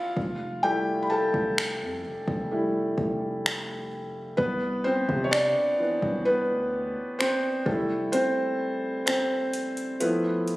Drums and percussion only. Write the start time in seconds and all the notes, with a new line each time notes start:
0.17 kick
1.34 kick
1.58 finger snap
2.28 kick
2.98 kick
3.46 finger snap
4.38 kick
5.09 kick
5.33 finger snap
6.02 kick
7.21 finger snap
7.66 kick
8.13 closed hi-hat
9.07 finger snap, closed hi-hat
9.53 closed hi-hat
9.77 closed hi-hat
10.01 closed hi-hat
10.48 closed hi-hat